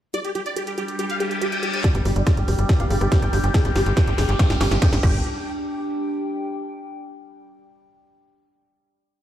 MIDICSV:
0, 0, Header, 1, 9, 480
1, 0, Start_track
1, 0, Tempo, 425532
1, 157, Time_signature, 4, 2, 24, 8
1, 10405, End_track
2, 0, Start_track
2, 0, Title_t, "Ambient pad"
2, 0, Program_c, 0, 92
2, 156, Note_on_c, 0, 62, 78
2, 315, Note_on_c, 0, 67, 88
2, 735, Note_on_c, 0, 79, 67
2, 5663, Note_off_c, 0, 62, 0
2, 5676, Note_on_c, 0, 62, 76
2, 5677, Note_off_c, 0, 67, 0
2, 5677, Note_off_c, 0, 79, 0
2, 5748, Note_on_c, 0, 67, 76
2, 6060, Note_on_c, 0, 79, 72
2, 7551, Note_off_c, 0, 62, 0
2, 7551, Note_off_c, 0, 67, 0
2, 7791, Note_off_c, 0, 79, 0
2, 10405, End_track
3, 0, Start_track
3, 0, Title_t, "Supersaw synth"
3, 0, Program_c, 1, 81
3, 156, Note_on_c, 1, 74, 98
3, 215, Note_off_c, 1, 74, 0
3, 276, Note_on_c, 1, 67, 64
3, 335, Note_off_c, 1, 67, 0
3, 397, Note_on_c, 1, 67, 63
3, 455, Note_off_c, 1, 67, 0
3, 517, Note_on_c, 1, 74, 91
3, 575, Note_off_c, 1, 74, 0
3, 637, Note_on_c, 1, 67, 65
3, 695, Note_off_c, 1, 67, 0
3, 757, Note_on_c, 1, 67, 64
3, 815, Note_off_c, 1, 67, 0
3, 877, Note_on_c, 1, 67, 62
3, 935, Note_off_c, 1, 67, 0
3, 1117, Note_on_c, 1, 67, 63
3, 1175, Note_off_c, 1, 67, 0
3, 1237, Note_on_c, 1, 77, 97
3, 1295, Note_off_c, 1, 77, 0
3, 1357, Note_on_c, 1, 67, 65
3, 1415, Note_off_c, 1, 67, 0
3, 1477, Note_on_c, 1, 67, 63
3, 1535, Note_off_c, 1, 67, 0
3, 1597, Note_on_c, 1, 67, 63
3, 1655, Note_off_c, 1, 67, 0
3, 1717, Note_on_c, 1, 79, 91
3, 1775, Note_off_c, 1, 79, 0
3, 1837, Note_on_c, 1, 67, 62
3, 1895, Note_off_c, 1, 67, 0
3, 1957, Note_on_c, 1, 67, 62
3, 2015, Note_off_c, 1, 67, 0
3, 2077, Note_on_c, 1, 74, 101
3, 2135, Note_off_c, 1, 74, 0
3, 2197, Note_on_c, 1, 67, 63
3, 2255, Note_off_c, 1, 67, 0
3, 2317, Note_on_c, 1, 67, 64
3, 2375, Note_off_c, 1, 67, 0
3, 2437, Note_on_c, 1, 74, 91
3, 2495, Note_off_c, 1, 74, 0
3, 2557, Note_on_c, 1, 67, 63
3, 2615, Note_off_c, 1, 67, 0
3, 2677, Note_on_c, 1, 67, 63
3, 2735, Note_off_c, 1, 67, 0
3, 2797, Note_on_c, 1, 67, 63
3, 2855, Note_off_c, 1, 67, 0
3, 3037, Note_on_c, 1, 67, 62
3, 3095, Note_off_c, 1, 67, 0
3, 3157, Note_on_c, 1, 77, 101
3, 3215, Note_off_c, 1, 77, 0
3, 3277, Note_on_c, 1, 67, 63
3, 3335, Note_off_c, 1, 67, 0
3, 3398, Note_on_c, 1, 67, 62
3, 3455, Note_off_c, 1, 67, 0
3, 3517, Note_on_c, 1, 67, 65
3, 3575, Note_off_c, 1, 67, 0
3, 3637, Note_on_c, 1, 79, 92
3, 3695, Note_off_c, 1, 79, 0
3, 3757, Note_on_c, 1, 67, 65
3, 3815, Note_off_c, 1, 67, 0
3, 3877, Note_on_c, 1, 67, 67
3, 3935, Note_off_c, 1, 67, 0
3, 3997, Note_on_c, 1, 79, 94
3, 4055, Note_off_c, 1, 79, 0
3, 4117, Note_on_c, 1, 67, 63
3, 4175, Note_off_c, 1, 67, 0
3, 4236, Note_on_c, 1, 67, 64
3, 4295, Note_off_c, 1, 67, 0
3, 4357, Note_on_c, 1, 67, 66
3, 4415, Note_off_c, 1, 67, 0
3, 4476, Note_on_c, 1, 79, 96
3, 4535, Note_off_c, 1, 79, 0
3, 4597, Note_on_c, 1, 67, 66
3, 4655, Note_off_c, 1, 67, 0
3, 4717, Note_on_c, 1, 67, 62
3, 4775, Note_off_c, 1, 67, 0
3, 4837, Note_on_c, 1, 67, 65
3, 4895, Note_off_c, 1, 67, 0
3, 4957, Note_on_c, 1, 79, 92
3, 5015, Note_off_c, 1, 79, 0
3, 5077, Note_on_c, 1, 67, 66
3, 5135, Note_off_c, 1, 67, 0
3, 5197, Note_on_c, 1, 67, 68
3, 5255, Note_off_c, 1, 67, 0
3, 5317, Note_on_c, 1, 67, 62
3, 5375, Note_off_c, 1, 67, 0
3, 5437, Note_on_c, 1, 79, 94
3, 5495, Note_off_c, 1, 79, 0
3, 5557, Note_on_c, 1, 67, 65
3, 5615, Note_off_c, 1, 67, 0
3, 5677, Note_on_c, 1, 79, 94
3, 5856, Note_off_c, 1, 79, 0
3, 10405, End_track
4, 0, Start_track
4, 0, Title_t, "Synth arpeggio sound"
4, 0, Program_c, 2, 84
4, 156, Note_on_c, 2, 67, 81
4, 182, Note_off_c, 2, 67, 0
4, 396, Note_on_c, 2, 67, 77
4, 422, Note_off_c, 2, 67, 0
4, 637, Note_on_c, 2, 68, 86
4, 662, Note_off_c, 2, 68, 0
4, 877, Note_on_c, 2, 67, 76
4, 902, Note_off_c, 2, 67, 0
4, 1116, Note_on_c, 2, 67, 82
4, 1142, Note_off_c, 2, 67, 0
4, 1356, Note_on_c, 2, 68, 79
4, 1382, Note_off_c, 2, 68, 0
4, 1596, Note_on_c, 2, 67, 84
4, 1622, Note_off_c, 2, 67, 0
4, 1837, Note_on_c, 2, 67, 78
4, 1862, Note_off_c, 2, 67, 0
4, 2077, Note_on_c, 2, 67, 86
4, 2102, Note_off_c, 2, 67, 0
4, 2317, Note_on_c, 2, 67, 78
4, 2342, Note_off_c, 2, 67, 0
4, 2556, Note_on_c, 2, 68, 85
4, 2582, Note_off_c, 2, 68, 0
4, 2796, Note_on_c, 2, 67, 76
4, 2822, Note_off_c, 2, 67, 0
4, 3037, Note_on_c, 2, 67, 86
4, 3062, Note_off_c, 2, 67, 0
4, 3277, Note_on_c, 2, 68, 76
4, 3302, Note_off_c, 2, 68, 0
4, 3516, Note_on_c, 2, 67, 84
4, 3542, Note_off_c, 2, 67, 0
4, 3757, Note_on_c, 2, 67, 79
4, 3782, Note_off_c, 2, 67, 0
4, 3997, Note_on_c, 2, 68, 83
4, 4022, Note_off_c, 2, 68, 0
4, 4237, Note_on_c, 2, 67, 78
4, 4262, Note_off_c, 2, 67, 0
4, 4477, Note_on_c, 2, 67, 87
4, 4502, Note_off_c, 2, 67, 0
4, 4717, Note_on_c, 2, 68, 77
4, 4742, Note_off_c, 2, 68, 0
4, 4957, Note_on_c, 2, 67, 84
4, 4982, Note_off_c, 2, 67, 0
4, 5197, Note_on_c, 2, 67, 78
4, 5222, Note_off_c, 2, 67, 0
4, 5437, Note_on_c, 2, 68, 85
4, 5462, Note_off_c, 2, 68, 0
4, 5677, Note_on_c, 2, 67, 95
4, 5900, Note_off_c, 2, 67, 0
4, 10405, End_track
5, 0, Start_track
5, 0, Title_t, "Synth drone"
5, 0, Program_c, 3, 95
5, 157, Note_on_c, 3, 55, 79
5, 157, Note_on_c, 3, 67, 77
5, 2062, Note_off_c, 3, 55, 0
5, 2063, Note_off_c, 3, 67, 0
5, 2076, Note_on_c, 3, 55, 82
5, 2076, Note_on_c, 3, 67, 81
5, 5676, Note_off_c, 3, 55, 0
5, 5676, Note_off_c, 3, 67, 0
5, 10405, End_track
6, 0, Start_track
6, 0, Title_t, "Analog synth bass"
6, 0, Program_c, 4, 38
6, 2196, Note_on_c, 4, 31, 88
6, 2278, Note_off_c, 4, 31, 0
6, 2316, Note_on_c, 4, 31, 96
6, 2397, Note_off_c, 4, 31, 0
6, 2436, Note_on_c, 4, 31, 91
6, 2517, Note_off_c, 4, 31, 0
6, 2676, Note_on_c, 4, 31, 84
6, 2757, Note_off_c, 4, 31, 0
6, 2796, Note_on_c, 4, 29, 98
6, 2877, Note_off_c, 4, 29, 0
6, 2916, Note_on_c, 4, 31, 91
6, 2997, Note_off_c, 4, 31, 0
6, 3156, Note_on_c, 4, 31, 85
6, 3237, Note_off_c, 4, 31, 0
6, 3276, Note_on_c, 4, 31, 98
6, 3358, Note_off_c, 4, 31, 0
6, 3396, Note_on_c, 4, 31, 91
6, 3477, Note_off_c, 4, 31, 0
6, 3636, Note_on_c, 4, 31, 91
6, 3718, Note_off_c, 4, 31, 0
6, 3756, Note_on_c, 4, 31, 104
6, 3837, Note_off_c, 4, 31, 0
6, 3876, Note_on_c, 4, 31, 91
6, 3958, Note_off_c, 4, 31, 0
6, 4116, Note_on_c, 4, 31, 87
6, 4198, Note_off_c, 4, 31, 0
6, 4236, Note_on_c, 4, 31, 100
6, 4317, Note_off_c, 4, 31, 0
6, 4356, Note_on_c, 4, 31, 93
6, 4438, Note_off_c, 4, 31, 0
6, 4596, Note_on_c, 4, 31, 89
6, 4677, Note_off_c, 4, 31, 0
6, 4716, Note_on_c, 4, 29, 101
6, 4797, Note_off_c, 4, 29, 0
6, 4836, Note_on_c, 4, 31, 94
6, 4917, Note_off_c, 4, 31, 0
6, 5076, Note_on_c, 4, 31, 89
6, 5157, Note_off_c, 4, 31, 0
6, 5196, Note_on_c, 4, 31, 103
6, 5277, Note_off_c, 4, 31, 0
6, 5316, Note_on_c, 4, 31, 93
6, 5397, Note_off_c, 4, 31, 0
6, 5556, Note_on_c, 4, 31, 90
6, 5638, Note_off_c, 4, 31, 0
6, 5676, Note_on_c, 4, 31, 102
6, 5900, Note_off_c, 4, 31, 0
6, 10405, End_track
7, 0, Start_track
7, 0, Title_t, "Reverse cymbal"
7, 0, Program_c, 5, 119
7, 1116, Note_on_c, 5, 60, 78
7, 2076, Note_off_c, 5, 60, 0
7, 10405, End_track
8, 0, Start_track
8, 0, Title_t, "Riser"
8, 0, Program_c, 6, 103
8, 2076, Note_on_c, 6, 60, 80
8, 5916, Note_off_c, 6, 60, 0
8, 10405, End_track
9, 0, Start_track
9, 0, Title_t, "Drums"
9, 157, Note_on_c, 9, 42, 93
9, 269, Note_off_c, 9, 42, 0
9, 277, Note_on_c, 9, 42, 55
9, 389, Note_off_c, 9, 42, 0
9, 396, Note_on_c, 9, 42, 64
9, 509, Note_off_c, 9, 42, 0
9, 517, Note_on_c, 9, 42, 54
9, 629, Note_off_c, 9, 42, 0
9, 637, Note_on_c, 9, 42, 99
9, 750, Note_off_c, 9, 42, 0
9, 757, Note_on_c, 9, 42, 54
9, 869, Note_off_c, 9, 42, 0
9, 877, Note_on_c, 9, 42, 62
9, 989, Note_off_c, 9, 42, 0
9, 996, Note_on_c, 9, 42, 54
9, 1109, Note_off_c, 9, 42, 0
9, 1116, Note_on_c, 9, 42, 91
9, 1229, Note_off_c, 9, 42, 0
9, 1237, Note_on_c, 9, 42, 55
9, 1349, Note_off_c, 9, 42, 0
9, 1356, Note_on_c, 9, 42, 67
9, 1469, Note_off_c, 9, 42, 0
9, 1477, Note_on_c, 9, 42, 53
9, 1589, Note_off_c, 9, 42, 0
9, 1597, Note_on_c, 9, 42, 93
9, 1709, Note_off_c, 9, 42, 0
9, 1717, Note_on_c, 9, 42, 54
9, 1830, Note_off_c, 9, 42, 0
9, 1837, Note_on_c, 9, 42, 68
9, 1950, Note_off_c, 9, 42, 0
9, 1957, Note_on_c, 9, 42, 54
9, 2070, Note_off_c, 9, 42, 0
9, 2076, Note_on_c, 9, 36, 114
9, 2077, Note_on_c, 9, 38, 49
9, 2077, Note_on_c, 9, 42, 94
9, 2189, Note_off_c, 9, 36, 0
9, 2190, Note_off_c, 9, 38, 0
9, 2190, Note_off_c, 9, 42, 0
9, 2197, Note_on_c, 9, 42, 56
9, 2310, Note_off_c, 9, 42, 0
9, 2317, Note_on_c, 9, 37, 37
9, 2317, Note_on_c, 9, 46, 101
9, 2429, Note_off_c, 9, 37, 0
9, 2429, Note_off_c, 9, 46, 0
9, 2437, Note_on_c, 9, 42, 54
9, 2550, Note_off_c, 9, 42, 0
9, 2556, Note_on_c, 9, 36, 117
9, 2557, Note_on_c, 9, 37, 77
9, 2557, Note_on_c, 9, 38, 53
9, 2557, Note_on_c, 9, 42, 97
9, 2669, Note_off_c, 9, 36, 0
9, 2669, Note_off_c, 9, 37, 0
9, 2669, Note_off_c, 9, 38, 0
9, 2669, Note_off_c, 9, 42, 0
9, 2677, Note_on_c, 9, 42, 52
9, 2790, Note_off_c, 9, 42, 0
9, 2797, Note_on_c, 9, 37, 37
9, 2797, Note_on_c, 9, 46, 90
9, 2910, Note_off_c, 9, 37, 0
9, 2910, Note_off_c, 9, 46, 0
9, 2917, Note_on_c, 9, 42, 55
9, 3029, Note_off_c, 9, 42, 0
9, 3036, Note_on_c, 9, 36, 114
9, 3037, Note_on_c, 9, 38, 59
9, 3037, Note_on_c, 9, 42, 96
9, 3149, Note_off_c, 9, 36, 0
9, 3149, Note_off_c, 9, 38, 0
9, 3149, Note_off_c, 9, 42, 0
9, 3157, Note_on_c, 9, 37, 38
9, 3157, Note_on_c, 9, 42, 56
9, 3270, Note_off_c, 9, 37, 0
9, 3270, Note_off_c, 9, 42, 0
9, 3277, Note_on_c, 9, 46, 103
9, 3389, Note_off_c, 9, 46, 0
9, 3397, Note_on_c, 9, 37, 74
9, 3397, Note_on_c, 9, 42, 55
9, 3509, Note_off_c, 9, 37, 0
9, 3509, Note_off_c, 9, 42, 0
9, 3516, Note_on_c, 9, 36, 116
9, 3516, Note_on_c, 9, 38, 67
9, 3516, Note_on_c, 9, 42, 100
9, 3629, Note_off_c, 9, 36, 0
9, 3629, Note_off_c, 9, 38, 0
9, 3629, Note_off_c, 9, 42, 0
9, 3637, Note_on_c, 9, 37, 38
9, 3637, Note_on_c, 9, 42, 53
9, 3749, Note_off_c, 9, 37, 0
9, 3749, Note_off_c, 9, 42, 0
9, 3756, Note_on_c, 9, 46, 91
9, 3869, Note_off_c, 9, 46, 0
9, 3877, Note_on_c, 9, 42, 57
9, 3989, Note_off_c, 9, 42, 0
9, 3996, Note_on_c, 9, 36, 127
9, 3997, Note_on_c, 9, 38, 77
9, 3997, Note_on_c, 9, 42, 95
9, 4109, Note_off_c, 9, 36, 0
9, 4110, Note_off_c, 9, 38, 0
9, 4110, Note_off_c, 9, 42, 0
9, 4117, Note_on_c, 9, 42, 57
9, 4229, Note_off_c, 9, 42, 0
9, 4236, Note_on_c, 9, 38, 76
9, 4236, Note_on_c, 9, 46, 106
9, 4349, Note_off_c, 9, 38, 0
9, 4349, Note_off_c, 9, 46, 0
9, 4357, Note_on_c, 9, 42, 54
9, 4469, Note_off_c, 9, 42, 0
9, 4476, Note_on_c, 9, 36, 124
9, 4476, Note_on_c, 9, 38, 84
9, 4476, Note_on_c, 9, 42, 96
9, 4589, Note_off_c, 9, 36, 0
9, 4589, Note_off_c, 9, 38, 0
9, 4589, Note_off_c, 9, 42, 0
9, 4597, Note_on_c, 9, 42, 53
9, 4709, Note_off_c, 9, 42, 0
9, 4717, Note_on_c, 9, 38, 86
9, 4717, Note_on_c, 9, 46, 95
9, 4829, Note_off_c, 9, 38, 0
9, 4829, Note_off_c, 9, 46, 0
9, 4837, Note_on_c, 9, 42, 55
9, 4949, Note_off_c, 9, 42, 0
9, 4956, Note_on_c, 9, 36, 125
9, 4957, Note_on_c, 9, 38, 91
9, 4957, Note_on_c, 9, 42, 97
9, 5069, Note_off_c, 9, 36, 0
9, 5069, Note_off_c, 9, 38, 0
9, 5069, Note_off_c, 9, 42, 0
9, 5077, Note_on_c, 9, 38, 84
9, 5077, Note_on_c, 9, 42, 55
9, 5190, Note_off_c, 9, 38, 0
9, 5190, Note_off_c, 9, 42, 0
9, 5197, Note_on_c, 9, 38, 100
9, 5197, Note_on_c, 9, 46, 110
9, 5309, Note_off_c, 9, 38, 0
9, 5309, Note_off_c, 9, 46, 0
9, 5317, Note_on_c, 9, 38, 86
9, 5317, Note_on_c, 9, 42, 53
9, 5429, Note_off_c, 9, 38, 0
9, 5429, Note_off_c, 9, 42, 0
9, 5437, Note_on_c, 9, 36, 125
9, 5437, Note_on_c, 9, 38, 105
9, 5437, Note_on_c, 9, 42, 98
9, 5549, Note_off_c, 9, 36, 0
9, 5549, Note_off_c, 9, 38, 0
9, 5549, Note_off_c, 9, 42, 0
9, 5557, Note_on_c, 9, 38, 93
9, 5557, Note_on_c, 9, 42, 54
9, 5669, Note_off_c, 9, 38, 0
9, 5669, Note_off_c, 9, 42, 0
9, 5676, Note_on_c, 9, 49, 90
9, 5677, Note_on_c, 9, 36, 118
9, 5789, Note_off_c, 9, 36, 0
9, 5789, Note_off_c, 9, 49, 0
9, 10405, End_track
0, 0, End_of_file